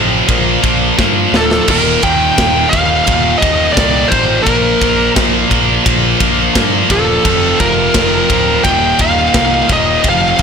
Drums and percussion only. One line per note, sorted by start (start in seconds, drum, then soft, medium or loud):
0.28 kick loud
0.28 ride loud
0.64 kick loud
0.64 ride medium
0.99 kick loud
0.99 snare medium
1.34 snare loud
1.51 snare medium
1.68 kick loud
1.68 splash medium
1.68 crash loud
2.02 kick medium
2.02 ride medium
2.38 kick loud
2.38 snare loud
2.38 ride loud
2.73 kick medium
2.73 ride medium
3.07 kick loud
3.07 ride loud
3.42 kick medium
3.42 ride medium
3.77 kick loud
3.77 snare loud
3.77 ride loud
4.12 kick medium
4.12 ride medium
4.46 kick loud
4.46 ride loud
4.82 kick medium
4.82 ride medium
5.16 kick loud
5.16 snare loud
5.16 ride loud
5.51 kick medium
5.51 ride medium
5.86 kick loud
5.86 ride loud
6.20 kick loud
6.20 ride medium
6.55 kick loud
6.55 snare loud
6.55 ride loud
6.90 kick loud
6.90 ride medium
7.25 kick loud
7.25 ride loud
7.60 kick medium
7.60 ride medium
7.94 kick loud
7.94 snare loud
7.94 ride loud
8.30 kick medium
8.30 ride medium
8.64 kick loud
8.64 ride medium
8.99 kick medium
8.99 ride medium
9.34 kick loud
9.34 snare loud
9.34 ride loud
9.69 kick loud
9.69 ride medium
10.04 kick loud
10.04 ride loud
10.39 kick medium
10.39 ride medium